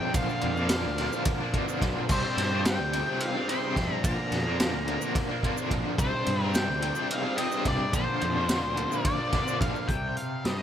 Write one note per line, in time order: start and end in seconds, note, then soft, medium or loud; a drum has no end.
0.00 0.13 C3 medium
0.00 0.14 G3 medium
0.00 0.17 C4 loud
0.00 0.18 D4 loud
0.00 7.89 D4 medium
0.00 0.13 G4 medium
0.00 5.95 C5 medium
0.00 0.14 G5 medium
0.14 0.26 A#1 loud
0.14 0.57 A#2 medium
0.14 0.57 D3 medium
0.14 0.31 F3 loud
0.14 0.30 A#3 loud
0.14 2.08 A#4 medium
0.14 1.22 F5 medium
0.14 kick loud
0.14 ride loud
0.14 shaker medium
0.18 0.28 D4 loud
0.29 0.58 F3 medium
0.29 0.57 A#3 medium
0.29 0.56 D4 medium
0.29 shaker soft
0.41 0.86 F2 medium
0.41 ride medium
0.56 0.71 F3 medium
0.56 0.72 A#3 medium
0.56 0.73 D4 medium
0.56 shaker soft
0.69 1.26 A#2 loud
0.69 0.97 D3 medium
0.69 0.98 F3 medium
0.69 snare loud
0.69 ride loud
0.69 shaker medium
0.73 0.99 A#3 medium
0.73 1.01 D4 medium
0.86 1.08 D2 loud
0.98 1.40 D3 medium
0.98 1.14 F3 loud
0.98 1.12 A#3 medium
0.98 1.12 D4 medium
0.98 snare soft
0.98 ride medium
1.12 1.43 F3 medium
1.12 1.41 A#3 medium
1.12 1.40 D4 medium
1.12 shaker medium
1.25 kick loud
1.25 ride loud
1.41 1.54 F3 medium
1.41 1.55 A#3 medium
1.41 1.56 D4 medium
1.53 1.81 D3 medium
1.53 1.69 F3 medium
1.53 1.68 A#3 medium
1.53 1.67 D4 medium
1.53 kick medium
1.53 ride medium
1.67 1.82 F3 medium
1.67 1.83 A#3 medium
1.67 1.84 D4 medium
1.67 shaker medium
1.81 1.93 B1 medium
1.81 2.08 A#2 medium
1.81 2.08 D3 medium
1.81 2.09 F3 medium
1.81 2.09 A#3 loud
1.81 2.12 D4 loud
1.81 kick medium
1.81 snare soft
1.81 ride medium
2.09 2.21 C2 medium
2.09 2.51 C3 medium
2.09 2.26 G3 medium
2.09 2.26 C4 medium
2.09 2.23 D4 loud
2.09 4.03 G4 medium
2.09 2.63 C5 medium
2.09 kick loud
2.09 crash loud
2.09 shaker medium
2.24 2.54 G3 medium
2.24 2.53 C4 medium
2.24 2.51 D4 medium
2.37 2.80 G2 loud
2.37 snare soft
2.37 ride medium
2.52 2.65 G3 medium
2.52 2.67 C4 medium
2.52 2.68 D4 medium
2.65 2.92 C3 medium
2.65 2.93 G3 loud
2.65 2.95 C4 medium
2.65 2.96 D4 medium
2.65 3.21 G5 loud
2.65 snare loud
2.65 ride loud
2.65 shaker medium
2.80 3.02 D2 medium
2.93 3.35 C3 medium
2.93 3.08 G3 medium
2.93 3.08 C4 medium
2.93 3.06 D4 medium
2.93 ride medium
3.06 3.37 G3 medium
3.06 3.36 C4 medium
3.06 3.34 D4 medium
3.20 3.47 F5 medium
3.20 ride loud
3.34 3.48 G3 medium
3.34 3.50 C4 medium
3.34 3.51 D4 medium
3.48 3.74 C3 medium
3.48 3.64 G3 medium
3.48 3.63 C4 medium
3.48 3.62 D4 medium
3.48 3.94 C6 loud
3.48 ride medium
3.62 3.75 G3 medium
3.62 3.77 C4 medium
3.62 3.78 D4 medium
3.75 3.88 F2 medium
3.75 4.02 C3 medium
3.75 4.03 G3 loud
3.75 4.05 C4 medium
3.75 4.06 D4 loud
3.75 kick medium
3.75 snare soft
3.75 ride medium
3.94 4.05 A#5 loud
4.03 4.15 A#1 loud
4.03 4.45 A#2 medium
4.03 4.46 D3 medium
4.03 4.19 F3 medium
4.03 4.17 A#3 medium
4.03 4.17 D4 loud
4.03 5.96 A#4 medium
4.03 5.12 A#5 medium
4.03 kick loud
4.03 ride loud
4.03 shaker medium
4.17 4.47 F3 medium
4.17 4.45 A#3 medium
4.17 4.45 D4 medium
4.32 4.74 F2 medium
4.32 snare soft
4.32 ride medium
4.45 4.60 F3 medium
4.45 4.61 A#3 medium
4.45 4.62 D4 medium
4.59 5.15 A#2 medium
4.59 4.86 D3 loud
4.59 4.87 F3 loud
4.59 4.88 A#3 loud
4.59 4.90 D4 medium
4.59 snare loud
4.59 ride medium
4.59 shaker medium
4.74 4.96 D2 medium
4.87 5.29 D3 medium
4.87 5.03 F3 medium
4.87 5.01 A#3 medium
4.87 5.00 D4 medium
4.87 ride medium
5.01 5.30 F3 medium
5.01 5.29 A#3 medium
5.01 5.28 D4 medium
5.01 shaker medium
5.15 kick loud
5.15 snare soft
5.15 ride medium
5.29 5.42 F3 medium
5.29 5.43 A#3 medium
5.29 5.45 D4 medium
5.42 5.71 D3 medium
5.42 5.59 F3 medium
5.42 5.57 A#3 medium
5.42 5.56 D4 medium
5.42 kick medium
5.42 ride medium
5.56 5.71 F3 medium
5.56 5.72 A#3 medium
5.56 5.74 D4 medium
5.56 shaker medium
5.71 5.82 A#1 medium
5.71 5.97 A#2 medium
5.71 5.98 D3 loud
5.71 5.98 F3 loud
5.71 5.98 A#3 loud
5.71 6.01 D4 loud
5.71 kick medium
5.71 ride medium
5.98 6.10 C2 medium
5.98 6.40 C3 medium
5.98 6.15 G3 loud
5.98 6.14 C4 medium
5.98 6.12 D4 medium
5.98 7.92 G4 medium
5.98 6.44 C5 medium
5.98 7.92 C5 medium
5.98 kick loud
5.98 ride loud
5.98 shaker loud
6.13 6.43 G3 medium
6.13 6.42 C4 medium
6.13 6.40 D4 medium
6.26 6.69 G2 medium
6.26 ride medium
6.40 6.54 G3 medium
6.40 6.56 C4 medium
6.40 6.57 D4 medium
6.44 6.56 A#4 medium
6.54 6.80 C3 loud
6.54 6.82 G3 loud
6.54 6.83 C4 loud
6.54 6.84 D4 medium
6.54 7.06 G5 loud
6.54 snare loud
6.54 ride loud
6.54 shaker loud
6.69 6.91 D2 loud
6.82 7.24 C3 medium
6.82 6.98 G3 medium
6.82 6.97 C4 loud
6.82 6.94 D4 loud
6.82 ride medium
6.95 7.25 G3 medium
6.95 7.25 C4 medium
6.95 7.22 D4 medium
6.95 shaker medium
7.11 7.37 F5 loud
7.11 ride loud
7.23 7.37 G3 medium
7.23 7.39 C4 medium
7.23 7.39 D4 medium
7.37 7.65 C3 medium
7.37 7.54 G3 medium
7.37 7.53 C4 medium
7.37 7.50 D4 medium
7.37 7.67 D#5 loud
7.37 ride medium
7.51 7.66 G3 medium
7.51 7.68 C4 medium
7.51 7.68 D4 medium
7.51 shaker medium
7.65 7.77 C2 medium
7.65 7.92 C3 medium
7.65 7.92 G3 medium
7.65 7.95 C4 medium
7.65 7.95 D5 loud
7.65 kick medium
7.65 snare soft
7.65 ride medium
7.69 7.94 D4 medium
7.93 8.04 A#1 loud
7.93 8.35 A#2 medium
7.93 8.36 D3 loud
7.93 8.09 F3 medium
7.93 8.07 A#3 medium
7.93 9.87 D4 medium
7.93 8.05 D4 loud
7.93 9.87 A#4 medium
7.93 9.02 C5 medium
7.93 9.87 C5 medium
7.93 kick loud
7.93 ride loud
7.93 shaker medium
8.07 8.37 F3 medium
8.07 8.35 A#3 medium
8.07 8.34 D4 medium
8.21 8.63 F2 loud
8.21 ride medium
8.21 shaker soft
8.35 8.49 F3 medium
8.35 8.49 A#3 medium
8.35 8.50 D4 medium
8.48 9.04 A#2 medium
8.48 8.75 D3 medium
8.48 8.77 F3 medium
8.48 8.77 A#3 medium
8.48 8.78 D4 loud
8.48 snare loud
8.48 ride medium
8.48 shaker loud
8.63 8.86 D2 medium
8.76 9.18 D3 medium
8.76 8.92 F3 medium
8.76 8.90 A#3 medium
8.76 8.89 D4 medium
8.76 ride medium
8.76 shaker soft
8.90 9.20 F3 medium
8.90 9.19 A#3 medium
8.90 9.17 D4 medium
8.90 shaker medium
9.02 9.57 A#4 medium
9.02 9.57 D5 loud
9.02 kick loud
9.02 ride medium
9.19 9.31 F3 medium
9.19 9.33 A#3 medium
9.19 9.34 D4 medium
9.32 9.59 D3 medium
9.32 9.48 F3 medium
9.32 9.47 A#3 medium
9.32 9.44 D4 medium
9.32 kick medium
9.32 snare soft
9.32 ride medium
9.46 9.60 F3 medium
9.46 9.61 A#3 medium
9.46 9.61 D4 medium
9.46 shaker medium
9.59 9.72 A#1 medium
9.59 9.86 A#2 medium
9.59 9.87 D3 medium
9.59 9.87 F3 loud
9.59 9.88 A#3 medium
9.59 9.88 D4 medium
9.59 9.90 F5 loud
9.59 kick medium
9.59 ride medium
9.59 shaker soft
9.76 shaker soft
9.88 10.11 C2 medium
9.88 10.62 C3 medium
9.88 10.14 G5 medium
9.88 kick loud
9.88 closed hi-hat medium
10.17 10.43 F5 medium
10.17 closed hi-hat medium
10.44 10.62 G2 medium
10.44 10.62 G3 medium
10.44 10.62 D#5 medium
10.44 snare medium
10.44 closed hi-hat medium